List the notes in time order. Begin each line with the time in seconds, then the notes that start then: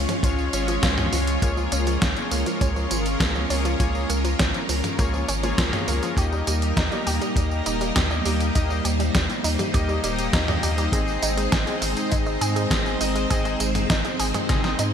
Already playing: G#3 C#4 F4 C#5
0.09 F3, closed hi-hat, mid tom, tambourine
0.23 C#2 F3 G#3 C#4 F4 C#5, kick, closed hi-hat, tambourine
0.38 tambourine
0.53 G#1 G#3 C#4 F4 C#5, closed hi-hat, tambourine
0.68 F3, closed hi-hat, tambourine
0.83 C#2 F4, kick, snare, closed hi-hat, tambourine
0.98 F3, mid tom, tambourine
1.13 C#2 F3, open hi-hat, tambourine
1.27 closed hi-hat, tambourine
1.42 C#2 A#3 C#4 F4 G#4 A#4 C#5, kick, closed hi-hat, tambourine
1.57 F3, tambourine
1.72 C#2 C#4, closed hi-hat, tambourine
1.87 F3, closed hi-hat, tambourine
2.02 C#2 F3, kick, snare, closed hi-hat, tambourine
2.17 closed hi-hat, tambourine
2.31 C#2 A#3, open hi-hat, tambourine
2.46 F3, closed hi-hat, tambourine
2.61 C#2 C#4, kick, closed hi-hat, tambourine
2.76 F3, tambourine
2.91 G#1 F3, closed hi-hat, tambourine
3.06 closed hi-hat, tambourine
3.20 C#2 A#3, kick, snare, closed hi-hat, tambourine
3.35 F3, tambourine
3.50 C#2 A#3 C#4 F4 G#4 C#5, open hi-hat, tambourine
3.65 F3, closed hi-hat, tambourine
3.80 C#2 F3 A#3 F4 G#4 C#5, kick, closed hi-hat, tambourine
3.95 tambourine
4.10 C#2 A#3, closed hi-hat, tambourine
4.24 F3, closed hi-hat, tambourine
4.39 C#2 C#4, kick, snare, closed hi-hat, tambourine
4.54 F3, closed hi-hat, tambourine
4.69 C#2 F3, open hi-hat, tambourine
4.84 closed hi-hat, mid tom, tambourine
4.99 C#2 A#3 F4 G#4 C#5, kick, closed hi-hat, tambourine
5.13 F3, tambourine
5.28 G#1 C#4, closed hi-hat, tambourine
5.43 F3 A#3 F4 G#4 C#5, closed hi-hat, tambourine
5.58 C#2 F3, kick, snare, closed hi-hat, tambourine
5.73 closed hi-hat, mid tom, tambourine
5.88 C#2 A#3, open hi-hat, tambourine
6.03 F3, closed hi-hat, tambourine
6.17 D#2 G3 A#3 D#4 G4 A#4 D#5, kick, closed hi-hat, tambourine
6.32 G3, tambourine
6.47 D#2 G3, closed hi-hat, tambourine
6.62 closed hi-hat, tambourine
6.77 D#2 D#4, kick, snare, closed hi-hat, tambourine
6.92 G3, closed hi-hat, tambourine
7.07 D#2 G4, open hi-hat, tambourine
7.21 G3, closed hi-hat, tambourine
7.36 D#2 G3, kick, closed hi-hat, tambourine
7.51 tambourine
7.66 D#1 D#4, closed hi-hat, tambourine
7.81 G3, closed hi-hat, tambourine
7.96 D#2 G4, kick, snare, closed hi-hat, tambourine
8.11 G3, tambourine
8.25 D#2 G3 A#3 D#4 G4 D#5, open hi-hat, tambourine
8.40 closed hi-hat, tambourine
8.55 D#2 A#3 D#4 G4 C5 D#5, kick, closed hi-hat, tambourine
8.70 G3, tambourine
8.85 D#2 G4, closed hi-hat, tambourine
9.00 G3, closed hi-hat, tambourine
9.14 D#2 G3, kick, snare, closed hi-hat, tambourine
9.30 closed hi-hat, tambourine
9.44 D#2 D#4, open hi-hat, tambourine
9.59 G3, closed hi-hat, mid tom, tambourine
9.74 D#2 A#3 D#4 G4 D#5, kick, closed hi-hat, tambourine
9.89 G3, tambourine
10.04 D#1 G3 A#3 D#4 G4 D#5, closed hi-hat, tambourine
10.19 closed hi-hat, tambourine
10.33 D#2 D#4, kick, snare, closed hi-hat, tambourine
10.48 G3, mid tom, tambourine
10.63 D#2 G4, open hi-hat, tambourine
10.78 G3, closed hi-hat, tambourine
10.92 G#1 G#3 C4 D#4 G#4 D#5, kick, closed hi-hat, tambourine
11.08 tambourine
11.22 G#1 D#4, closed hi-hat, tambourine
11.37 G#3, closed hi-hat, tambourine
11.52 G#1 G#4, kick, snare, closed hi-hat, tambourine
11.67 G#3, closed hi-hat, tambourine
11.82 G#1 G#3, open hi-hat, tambourine
11.97 closed hi-hat, tambourine
12.12 G#1 D#4, kick, closed hi-hat, tambourine
12.26 G#3, tambourine
12.41 G#2 G#4, closed hi-hat, tambourine
12.56 G#3, closed hi-hat, tambourine
12.71 G#1 G#3, kick, snare, closed hi-hat, tambourine
12.86 tambourine
13.01 G#1 C4 D#4 G#4 D#5, open hi-hat, tambourine
13.15 G#3, closed hi-hat, tambourine
13.30 G#1 C4 D#4 G#4 D#5, kick, closed hi-hat, tambourine
13.45 G#3, closed hi-hat, tambourine
13.60 G#1 G#3, closed hi-hat, tambourine
13.75 closed hi-hat, mid tom, tambourine
13.90 G#1 D#4, kick, snare, closed hi-hat, tambourine
14.05 G#3, closed hi-hat, tambourine
14.20 G#1 G#4, open hi-hat, tambourine
14.34 G#3, closed hi-hat, mid tom, tambourine
14.49 G#1 G#3 C4 D#4 G#4 D#5, kick, snare, closed hi-hat, high tom, tambourine
14.64 snare, tambourine
14.79 G#2 D#4, closed hi-hat, tambourine